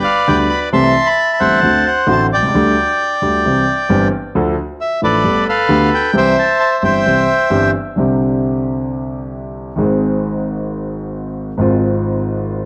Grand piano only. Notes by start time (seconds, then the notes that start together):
0.28 D2 D3 G3 B3 G4
0.73 C2 C3 E3 A3 C4 G4
1.40 G1 G2 E3 A3 C4 G4
1.62 D2 D3 A3 C4 F#4
2.07 A1 A2 D3 A3 C4 F#4
2.36 B1
2.42 C2
2.47 C#2
2.54 D2 D3 G3 A3 G4
3.22 D2 D3 G3 A3 G4
3.45 C2 C3 E3 G3 C4 G4
3.89 G1 G2 E3 G3 C4 G4
4.35 D2 D3 F3 A3 D4 A4
5.02 A1 A2 F3 A3 D4 A4
5.24 G1 G2 D3 A3 B3 G4
5.69 D2 D3 A3 B3 G4
6.13 C2 C3 E3 G3 C4 G4
6.82 G1 G2 E3 G3 C4 G4
7.06 C2 C3 E3 G3 C4 G4
7.50 G1 G2 E3 G3 C4 G4
7.96 C2 C3 D3 G3 C4 G4
9.76 G#1 G#2 D#3 G#3 C4
9.80 G#4
11.57 G#1 G#2 D#3 G#3 C4 F4